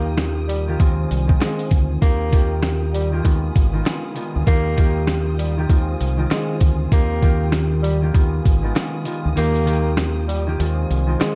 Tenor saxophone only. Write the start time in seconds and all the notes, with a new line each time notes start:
Already playing: A#3
0.48 G3
1.40 G#3
2.02 A#3
2.94 G3
4.47 A#3
5.38 G3
6.32 G#3
6.93 A#3
7.82 G3
9.38 A#3
10.28 G3
11.19 G#3